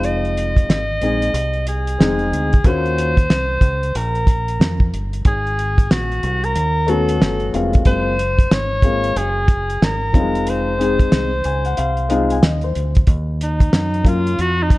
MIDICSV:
0, 0, Header, 1, 5, 480
1, 0, Start_track
1, 0, Tempo, 652174
1, 26, Time_signature, 4, 2, 24, 8
1, 10880, End_track
2, 0, Start_track
2, 0, Title_t, "Alto saxophone"
2, 0, Program_c, 0, 65
2, 35, Note_on_c, 0, 75, 107
2, 1231, Note_off_c, 0, 75, 0
2, 1238, Note_on_c, 0, 68, 85
2, 1959, Note_on_c, 0, 72, 102
2, 1970, Note_off_c, 0, 68, 0
2, 2918, Note_on_c, 0, 70, 89
2, 2929, Note_off_c, 0, 72, 0
2, 3632, Note_off_c, 0, 70, 0
2, 3880, Note_on_c, 0, 68, 92
2, 4353, Note_on_c, 0, 66, 90
2, 4364, Note_off_c, 0, 68, 0
2, 4741, Note_on_c, 0, 70, 108
2, 4752, Note_off_c, 0, 66, 0
2, 5069, Note_on_c, 0, 69, 90
2, 5080, Note_off_c, 0, 70, 0
2, 5548, Note_off_c, 0, 69, 0
2, 5792, Note_on_c, 0, 72, 102
2, 6273, Note_on_c, 0, 73, 110
2, 6284, Note_off_c, 0, 72, 0
2, 6754, Note_on_c, 0, 68, 100
2, 6765, Note_off_c, 0, 73, 0
2, 7241, Note_on_c, 0, 70, 95
2, 7252, Note_off_c, 0, 68, 0
2, 7725, Note_on_c, 0, 72, 97
2, 7736, Note_off_c, 0, 70, 0
2, 9156, Note_off_c, 0, 72, 0
2, 9885, Note_on_c, 0, 63, 85
2, 10365, Note_on_c, 0, 65, 98
2, 10376, Note_off_c, 0, 63, 0
2, 10604, Note_on_c, 0, 66, 111
2, 10615, Note_off_c, 0, 65, 0
2, 10765, Note_on_c, 0, 63, 101
2, 10776, Note_off_c, 0, 66, 0
2, 10880, Note_off_c, 0, 63, 0
2, 10880, End_track
3, 0, Start_track
3, 0, Title_t, "Grand piano"
3, 0, Program_c, 1, 0
3, 0, Note_on_c, 1, 56, 68
3, 0, Note_on_c, 1, 60, 60
3, 0, Note_on_c, 1, 63, 60
3, 0, Note_on_c, 1, 65, 76
3, 564, Note_off_c, 1, 56, 0
3, 567, Note_off_c, 1, 60, 0
3, 570, Note_off_c, 1, 63, 0
3, 575, Note_off_c, 1, 65, 0
3, 745, Note_on_c, 1, 56, 64
3, 751, Note_on_c, 1, 60, 56
3, 758, Note_on_c, 1, 63, 58
3, 761, Note_on_c, 1, 68, 74
3, 934, Note_off_c, 1, 56, 0
3, 937, Note_off_c, 1, 60, 0
3, 940, Note_off_c, 1, 63, 0
3, 942, Note_off_c, 1, 68, 0
3, 1461, Note_on_c, 1, 56, 72
3, 1469, Note_on_c, 1, 60, 64
3, 1478, Note_on_c, 1, 63, 68
3, 1483, Note_on_c, 1, 68, 78
3, 1826, Note_off_c, 1, 56, 0
3, 1830, Note_off_c, 1, 60, 0
3, 1835, Note_off_c, 1, 63, 0
3, 1837, Note_off_c, 1, 68, 0
3, 1943, Note_on_c, 1, 58, 64
3, 1950, Note_on_c, 1, 61, 63
3, 1954, Note_on_c, 1, 65, 61
3, 1964, Note_on_c, 1, 66, 73
3, 2307, Note_off_c, 1, 58, 0
3, 2310, Note_off_c, 1, 61, 0
3, 2313, Note_off_c, 1, 65, 0
3, 2318, Note_off_c, 1, 66, 0
3, 5054, Note_on_c, 1, 57, 71
3, 5061, Note_on_c, 1, 59, 60
3, 5065, Note_on_c, 1, 61, 63
3, 5072, Note_on_c, 1, 66, 78
3, 5537, Note_on_c, 1, 56, 60
3, 5542, Note_on_c, 1, 58, 52
3, 5546, Note_on_c, 1, 60, 58
3, 5552, Note_on_c, 1, 65, 74
3, 5745, Note_off_c, 1, 57, 0
3, 5749, Note_off_c, 1, 59, 0
3, 5751, Note_off_c, 1, 61, 0
3, 5754, Note_off_c, 1, 66, 0
3, 5767, Note_off_c, 1, 56, 0
3, 5773, Note_off_c, 1, 58, 0
3, 5778, Note_on_c, 1, 56, 65
3, 5780, Note_off_c, 1, 60, 0
3, 5783, Note_off_c, 1, 65, 0
3, 5784, Note_on_c, 1, 58, 53
3, 5791, Note_on_c, 1, 60, 54
3, 5795, Note_on_c, 1, 65, 66
3, 5970, Note_off_c, 1, 56, 0
3, 5973, Note_off_c, 1, 58, 0
3, 5977, Note_off_c, 1, 60, 0
3, 5978, Note_off_c, 1, 65, 0
3, 6495, Note_on_c, 1, 56, 64
3, 6499, Note_on_c, 1, 58, 61
3, 6505, Note_on_c, 1, 60, 55
3, 6515, Note_on_c, 1, 65, 64
3, 6689, Note_off_c, 1, 56, 0
3, 6691, Note_off_c, 1, 58, 0
3, 6693, Note_off_c, 1, 60, 0
3, 6698, Note_off_c, 1, 65, 0
3, 7455, Note_on_c, 1, 54, 58
3, 7460, Note_on_c, 1, 60, 69
3, 7466, Note_on_c, 1, 63, 66
3, 7472, Note_on_c, 1, 65, 79
3, 7501, Note_on_c, 1, 56, 78
3, 7522, Note_off_c, 1, 54, 0
3, 7874, Note_off_c, 1, 60, 0
3, 7877, Note_off_c, 1, 63, 0
3, 7880, Note_off_c, 1, 65, 0
3, 7894, Note_off_c, 1, 56, 0
3, 7932, Note_on_c, 1, 56, 67
3, 7938, Note_on_c, 1, 60, 61
3, 7946, Note_on_c, 1, 63, 59
3, 7951, Note_on_c, 1, 68, 77
3, 8302, Note_off_c, 1, 56, 0
3, 8305, Note_off_c, 1, 60, 0
3, 8309, Note_off_c, 1, 63, 0
3, 8311, Note_off_c, 1, 68, 0
3, 8427, Note_on_c, 1, 80, 64
3, 8569, Note_off_c, 1, 80, 0
3, 8580, Note_on_c, 1, 78, 68
3, 8661, Note_off_c, 1, 78, 0
3, 8666, Note_on_c, 1, 77, 75
3, 8897, Note_on_c, 1, 56, 78
3, 8905, Note_on_c, 1, 60, 67
3, 8908, Note_on_c, 1, 63, 69
3, 8916, Note_on_c, 1, 65, 86
3, 9032, Note_off_c, 1, 77, 0
3, 9062, Note_on_c, 1, 80, 66
3, 9090, Note_off_c, 1, 56, 0
3, 9094, Note_off_c, 1, 60, 0
3, 9095, Note_off_c, 1, 63, 0
3, 9099, Note_off_c, 1, 65, 0
3, 9142, Note_off_c, 1, 80, 0
3, 9149, Note_on_c, 1, 75, 64
3, 9290, Note_off_c, 1, 75, 0
3, 9302, Note_on_c, 1, 72, 67
3, 9605, Note_off_c, 1, 72, 0
3, 10332, Note_on_c, 1, 54, 61
3, 10339, Note_on_c, 1, 58, 58
3, 10342, Note_on_c, 1, 61, 54
3, 10348, Note_on_c, 1, 65, 72
3, 10527, Note_off_c, 1, 54, 0
3, 10531, Note_off_c, 1, 58, 0
3, 10532, Note_off_c, 1, 61, 0
3, 10535, Note_off_c, 1, 65, 0
3, 10880, End_track
4, 0, Start_track
4, 0, Title_t, "Fingered electric bass"
4, 0, Program_c, 2, 33
4, 0, Note_on_c, 2, 29, 92
4, 476, Note_off_c, 2, 29, 0
4, 506, Note_on_c, 2, 32, 76
4, 734, Note_off_c, 2, 32, 0
4, 747, Note_on_c, 2, 34, 78
4, 975, Note_off_c, 2, 34, 0
4, 985, Note_on_c, 2, 36, 91
4, 1442, Note_off_c, 2, 36, 0
4, 1469, Note_on_c, 2, 29, 91
4, 1696, Note_off_c, 2, 29, 0
4, 1709, Note_on_c, 2, 38, 76
4, 1936, Note_off_c, 2, 38, 0
4, 1949, Note_on_c, 2, 39, 106
4, 2404, Note_off_c, 2, 39, 0
4, 2429, Note_on_c, 2, 36, 81
4, 2656, Note_off_c, 2, 36, 0
4, 2661, Note_on_c, 2, 37, 92
4, 2892, Note_off_c, 2, 37, 0
4, 2909, Note_on_c, 2, 34, 105
4, 3364, Note_off_c, 2, 34, 0
4, 3384, Note_on_c, 2, 41, 92
4, 3613, Note_off_c, 2, 41, 0
4, 3629, Note_on_c, 2, 31, 80
4, 3856, Note_off_c, 2, 31, 0
4, 3867, Note_on_c, 2, 32, 107
4, 4323, Note_off_c, 2, 32, 0
4, 4348, Note_on_c, 2, 34, 83
4, 4576, Note_off_c, 2, 34, 0
4, 4589, Note_on_c, 2, 36, 93
4, 4816, Note_off_c, 2, 36, 0
4, 4826, Note_on_c, 2, 39, 94
4, 5283, Note_off_c, 2, 39, 0
4, 5309, Note_on_c, 2, 31, 95
4, 5536, Note_off_c, 2, 31, 0
4, 5548, Note_on_c, 2, 29, 90
4, 5775, Note_off_c, 2, 29, 0
4, 5784, Note_on_c, 2, 30, 100
4, 6241, Note_off_c, 2, 30, 0
4, 6265, Note_on_c, 2, 32, 85
4, 6722, Note_off_c, 2, 32, 0
4, 6743, Note_on_c, 2, 30, 92
4, 7201, Note_off_c, 2, 30, 0
4, 7226, Note_on_c, 2, 32, 91
4, 7465, Note_off_c, 2, 32, 0
4, 7465, Note_on_c, 2, 29, 81
4, 8156, Note_off_c, 2, 29, 0
4, 8191, Note_on_c, 2, 36, 93
4, 8417, Note_off_c, 2, 36, 0
4, 8429, Note_on_c, 2, 37, 77
4, 8656, Note_off_c, 2, 37, 0
4, 8673, Note_on_c, 2, 36, 96
4, 9126, Note_off_c, 2, 36, 0
4, 9148, Note_on_c, 2, 39, 87
4, 9375, Note_off_c, 2, 39, 0
4, 9392, Note_on_c, 2, 38, 80
4, 9618, Note_off_c, 2, 38, 0
4, 9624, Note_on_c, 2, 39, 97
4, 10081, Note_off_c, 2, 39, 0
4, 10106, Note_on_c, 2, 42, 88
4, 10562, Note_off_c, 2, 42, 0
4, 10591, Note_on_c, 2, 41, 91
4, 10880, Note_off_c, 2, 41, 0
4, 10880, End_track
5, 0, Start_track
5, 0, Title_t, "Drums"
5, 25, Note_on_c, 9, 42, 77
5, 99, Note_off_c, 9, 42, 0
5, 183, Note_on_c, 9, 42, 29
5, 256, Note_off_c, 9, 42, 0
5, 275, Note_on_c, 9, 42, 78
5, 349, Note_off_c, 9, 42, 0
5, 416, Note_on_c, 9, 36, 81
5, 425, Note_on_c, 9, 42, 55
5, 489, Note_off_c, 9, 36, 0
5, 498, Note_off_c, 9, 42, 0
5, 514, Note_on_c, 9, 38, 97
5, 514, Note_on_c, 9, 42, 84
5, 588, Note_off_c, 9, 38, 0
5, 588, Note_off_c, 9, 42, 0
5, 747, Note_on_c, 9, 42, 65
5, 820, Note_off_c, 9, 42, 0
5, 898, Note_on_c, 9, 42, 46
5, 972, Note_off_c, 9, 42, 0
5, 989, Note_on_c, 9, 42, 84
5, 1062, Note_off_c, 9, 42, 0
5, 1130, Note_on_c, 9, 42, 29
5, 1203, Note_off_c, 9, 42, 0
5, 1227, Note_on_c, 9, 42, 78
5, 1301, Note_off_c, 9, 42, 0
5, 1379, Note_on_c, 9, 42, 50
5, 1453, Note_off_c, 9, 42, 0
5, 1476, Note_on_c, 9, 38, 91
5, 1478, Note_on_c, 9, 42, 66
5, 1550, Note_off_c, 9, 38, 0
5, 1552, Note_off_c, 9, 42, 0
5, 1612, Note_on_c, 9, 42, 30
5, 1685, Note_off_c, 9, 42, 0
5, 1718, Note_on_c, 9, 42, 67
5, 1791, Note_off_c, 9, 42, 0
5, 1859, Note_on_c, 9, 42, 45
5, 1868, Note_on_c, 9, 36, 85
5, 1933, Note_off_c, 9, 42, 0
5, 1942, Note_off_c, 9, 36, 0
5, 1946, Note_on_c, 9, 36, 112
5, 1946, Note_on_c, 9, 42, 88
5, 2019, Note_off_c, 9, 42, 0
5, 2020, Note_off_c, 9, 36, 0
5, 2102, Note_on_c, 9, 42, 31
5, 2176, Note_off_c, 9, 42, 0
5, 2196, Note_on_c, 9, 42, 78
5, 2269, Note_off_c, 9, 42, 0
5, 2335, Note_on_c, 9, 36, 89
5, 2342, Note_on_c, 9, 42, 56
5, 2409, Note_off_c, 9, 36, 0
5, 2415, Note_off_c, 9, 42, 0
5, 2430, Note_on_c, 9, 38, 114
5, 2430, Note_on_c, 9, 42, 89
5, 2504, Note_off_c, 9, 38, 0
5, 2504, Note_off_c, 9, 42, 0
5, 2658, Note_on_c, 9, 36, 89
5, 2663, Note_on_c, 9, 42, 65
5, 2731, Note_off_c, 9, 36, 0
5, 2737, Note_off_c, 9, 42, 0
5, 2820, Note_on_c, 9, 42, 46
5, 2894, Note_off_c, 9, 42, 0
5, 2909, Note_on_c, 9, 42, 89
5, 2982, Note_off_c, 9, 42, 0
5, 3055, Note_on_c, 9, 42, 32
5, 3129, Note_off_c, 9, 42, 0
5, 3143, Note_on_c, 9, 36, 94
5, 3149, Note_on_c, 9, 42, 77
5, 3216, Note_off_c, 9, 36, 0
5, 3223, Note_off_c, 9, 42, 0
5, 3299, Note_on_c, 9, 42, 53
5, 3373, Note_off_c, 9, 42, 0
5, 3394, Note_on_c, 9, 38, 110
5, 3397, Note_on_c, 9, 42, 64
5, 3468, Note_off_c, 9, 38, 0
5, 3470, Note_off_c, 9, 42, 0
5, 3533, Note_on_c, 9, 36, 87
5, 3606, Note_off_c, 9, 36, 0
5, 3633, Note_on_c, 9, 42, 73
5, 3707, Note_off_c, 9, 42, 0
5, 3777, Note_on_c, 9, 42, 50
5, 3851, Note_off_c, 9, 42, 0
5, 3863, Note_on_c, 9, 42, 85
5, 3866, Note_on_c, 9, 36, 101
5, 3937, Note_off_c, 9, 42, 0
5, 3939, Note_off_c, 9, 36, 0
5, 4024, Note_on_c, 9, 42, 34
5, 4098, Note_off_c, 9, 42, 0
5, 4113, Note_on_c, 9, 42, 77
5, 4186, Note_off_c, 9, 42, 0
5, 4254, Note_on_c, 9, 36, 92
5, 4262, Note_on_c, 9, 42, 59
5, 4328, Note_off_c, 9, 36, 0
5, 4335, Note_off_c, 9, 42, 0
5, 4349, Note_on_c, 9, 38, 121
5, 4349, Note_on_c, 9, 42, 83
5, 4423, Note_off_c, 9, 38, 0
5, 4423, Note_off_c, 9, 42, 0
5, 4502, Note_on_c, 9, 42, 33
5, 4576, Note_off_c, 9, 42, 0
5, 4586, Note_on_c, 9, 42, 63
5, 4660, Note_off_c, 9, 42, 0
5, 4738, Note_on_c, 9, 42, 46
5, 4811, Note_off_c, 9, 42, 0
5, 4824, Note_on_c, 9, 42, 90
5, 4898, Note_off_c, 9, 42, 0
5, 5063, Note_on_c, 9, 42, 79
5, 5137, Note_off_c, 9, 42, 0
5, 5216, Note_on_c, 9, 42, 59
5, 5289, Note_off_c, 9, 42, 0
5, 5311, Note_on_c, 9, 38, 106
5, 5313, Note_on_c, 9, 42, 69
5, 5385, Note_off_c, 9, 38, 0
5, 5387, Note_off_c, 9, 42, 0
5, 5445, Note_on_c, 9, 42, 33
5, 5519, Note_off_c, 9, 42, 0
5, 5549, Note_on_c, 9, 42, 73
5, 5623, Note_off_c, 9, 42, 0
5, 5691, Note_on_c, 9, 42, 50
5, 5704, Note_on_c, 9, 36, 92
5, 5765, Note_off_c, 9, 42, 0
5, 5778, Note_off_c, 9, 36, 0
5, 5778, Note_on_c, 9, 42, 86
5, 5782, Note_on_c, 9, 36, 114
5, 5852, Note_off_c, 9, 42, 0
5, 5855, Note_off_c, 9, 36, 0
5, 6030, Note_on_c, 9, 42, 79
5, 6103, Note_off_c, 9, 42, 0
5, 6172, Note_on_c, 9, 36, 91
5, 6180, Note_on_c, 9, 42, 58
5, 6245, Note_off_c, 9, 36, 0
5, 6253, Note_off_c, 9, 42, 0
5, 6267, Note_on_c, 9, 38, 122
5, 6267, Note_on_c, 9, 42, 93
5, 6340, Note_off_c, 9, 38, 0
5, 6340, Note_off_c, 9, 42, 0
5, 6495, Note_on_c, 9, 36, 92
5, 6500, Note_on_c, 9, 42, 66
5, 6568, Note_off_c, 9, 36, 0
5, 6574, Note_off_c, 9, 42, 0
5, 6652, Note_on_c, 9, 42, 51
5, 6725, Note_off_c, 9, 42, 0
5, 6745, Note_on_c, 9, 42, 85
5, 6819, Note_off_c, 9, 42, 0
5, 6978, Note_on_c, 9, 36, 102
5, 6979, Note_on_c, 9, 42, 81
5, 7052, Note_off_c, 9, 36, 0
5, 7053, Note_off_c, 9, 42, 0
5, 7137, Note_on_c, 9, 42, 56
5, 7210, Note_off_c, 9, 42, 0
5, 7230, Note_on_c, 9, 38, 112
5, 7233, Note_on_c, 9, 42, 76
5, 7304, Note_off_c, 9, 38, 0
5, 7306, Note_off_c, 9, 42, 0
5, 7464, Note_on_c, 9, 36, 94
5, 7471, Note_on_c, 9, 42, 75
5, 7538, Note_off_c, 9, 36, 0
5, 7544, Note_off_c, 9, 42, 0
5, 7619, Note_on_c, 9, 42, 50
5, 7693, Note_off_c, 9, 42, 0
5, 7704, Note_on_c, 9, 42, 96
5, 7777, Note_off_c, 9, 42, 0
5, 7956, Note_on_c, 9, 42, 73
5, 8029, Note_off_c, 9, 42, 0
5, 8092, Note_on_c, 9, 36, 85
5, 8098, Note_on_c, 9, 42, 57
5, 8166, Note_off_c, 9, 36, 0
5, 8171, Note_off_c, 9, 42, 0
5, 8184, Note_on_c, 9, 38, 108
5, 8184, Note_on_c, 9, 42, 88
5, 8258, Note_off_c, 9, 38, 0
5, 8258, Note_off_c, 9, 42, 0
5, 8420, Note_on_c, 9, 42, 68
5, 8493, Note_off_c, 9, 42, 0
5, 8573, Note_on_c, 9, 42, 46
5, 8646, Note_off_c, 9, 42, 0
5, 8664, Note_on_c, 9, 42, 83
5, 8738, Note_off_c, 9, 42, 0
5, 8810, Note_on_c, 9, 42, 34
5, 8883, Note_off_c, 9, 42, 0
5, 8904, Note_on_c, 9, 42, 84
5, 8978, Note_off_c, 9, 42, 0
5, 9055, Note_on_c, 9, 42, 54
5, 9128, Note_off_c, 9, 42, 0
5, 9146, Note_on_c, 9, 38, 105
5, 9149, Note_on_c, 9, 42, 76
5, 9220, Note_off_c, 9, 38, 0
5, 9222, Note_off_c, 9, 42, 0
5, 9283, Note_on_c, 9, 42, 31
5, 9357, Note_off_c, 9, 42, 0
5, 9387, Note_on_c, 9, 42, 73
5, 9460, Note_off_c, 9, 42, 0
5, 9532, Note_on_c, 9, 42, 49
5, 9544, Note_on_c, 9, 36, 92
5, 9605, Note_off_c, 9, 42, 0
5, 9617, Note_off_c, 9, 36, 0
5, 9618, Note_on_c, 9, 42, 89
5, 9622, Note_on_c, 9, 36, 106
5, 9692, Note_off_c, 9, 42, 0
5, 9696, Note_off_c, 9, 36, 0
5, 9870, Note_on_c, 9, 42, 77
5, 9944, Note_off_c, 9, 42, 0
5, 10012, Note_on_c, 9, 36, 93
5, 10018, Note_on_c, 9, 42, 57
5, 10086, Note_off_c, 9, 36, 0
5, 10092, Note_off_c, 9, 42, 0
5, 10105, Note_on_c, 9, 38, 110
5, 10105, Note_on_c, 9, 42, 88
5, 10178, Note_off_c, 9, 38, 0
5, 10178, Note_off_c, 9, 42, 0
5, 10260, Note_on_c, 9, 42, 33
5, 10333, Note_off_c, 9, 42, 0
5, 10338, Note_on_c, 9, 36, 91
5, 10350, Note_on_c, 9, 42, 69
5, 10412, Note_off_c, 9, 36, 0
5, 10424, Note_off_c, 9, 42, 0
5, 10501, Note_on_c, 9, 42, 52
5, 10575, Note_off_c, 9, 42, 0
5, 10589, Note_on_c, 9, 42, 86
5, 10662, Note_off_c, 9, 42, 0
5, 10822, Note_on_c, 9, 36, 102
5, 10828, Note_on_c, 9, 42, 83
5, 10880, Note_off_c, 9, 36, 0
5, 10880, Note_off_c, 9, 42, 0
5, 10880, End_track
0, 0, End_of_file